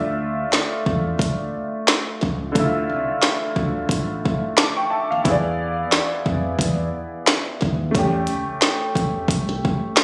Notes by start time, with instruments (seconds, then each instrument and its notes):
Already playing: upright bass D2, upright piano A3 D4 F4 E5
0.53 snare, clap, closed hi-hat
0.86 upright bass E2, kick
1.19 upright bass D2, kick, closed hi-hat
1.88 snare, clap, closed hi-hat
2.21 upright bass C#2, kick, snare
2.52 upright bass D2, upright piano D3 A3, kick, closed hi-hat
2.57 upright piano E4 E5
2.64 upright piano F4
2.90 upright bass C2
3.23 snare, clap, closed hi-hat
3.56 upright bass D2, kick
3.89 upright bass A1, kick, closed hi-hat
4.25 kick
4.57 upright piano A5 D6, snare, clap, closed hi-hat
4.77 upright piano G5 C#6
4.90 upright piano E5 A5
5.11 upright bass D#2, upright piano F5
5.24 upright bass E2, upright piano B3 E4, kick, closed hi-hat
5.29 upright piano G#4 D5
5.92 snare, clap, closed hi-hat
6.26 upright bass F2, kick
6.59 upright bass E2, kick, closed hi-hat
7.27 snare, clap, closed hi-hat
7.61 upright bass D#2, kick, snare
7.91 upright bass E2, upright piano A3 C#4, kick
7.95 upright piano G4, closed hi-hat
8.27 upright bass C#2, closed hi-hat
8.62 snare, clap, closed hi-hat
8.95 upright bass E2, kick, closed hi-hat
9.28 upright bass C2, kick, closed hi-hat
9.49 snare
9.65 kick
9.97 snare, clap, closed hi-hat